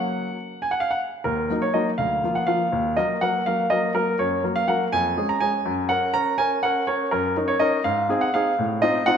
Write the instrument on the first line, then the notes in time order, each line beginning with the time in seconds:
grand piano
Already playing: F#3 A#3 C#4 F#5
0.62 G#5
0.71 F#5
0.80 F5
0.91 F#5
1.24 D#2 A#4
1.50 F#3 A#3 D#4
1.62 C#5
1.74 F#3 A#3 D#4 D#5
1.98 D2 F5
2.24 F3 A#3 F4
2.35 F#5
2.47 F3 A#3 F4 F5
2.72 D#2
2.97 F#3 A#3 A#4 D#5
3.21 F#3 A#3 A#4 F#5
3.46 F#3 A#3 A#4 F5
3.70 F#3 A#3 A#4 D#5
3.95 F#3 A#3 A#4
4.19 F#2 C#5
4.44 F#3 A#3 A#4
4.56 F5
4.68 F#3 A#3 A#4 F#5
4.92 F2 G#5
5.17 G#3 C#4 G#4
5.29 A#5
5.40 G#3 C#4 G#4 G#5
5.65 F#2
5.89 C#4 A#4 F#5
6.14 C#4 A#4 A#5
6.38 C#4 A#4 G#5
6.63 C#4 A#4 F#5
6.87 C#4 A#4 C#5
7.11 F#2 A#4
7.36 C#4 D#4 A#4
7.48 C#5
7.60 C#4 D#4 A#4 D#5
7.84 G#2 F5
8.09 C4 D#4 G#4
8.21 F#5
8.34 C4 D#4 G#4 F5
8.59 A2
8.82 C4 D#4 F4 D#5
9.06 C4 D#4 F4 F#5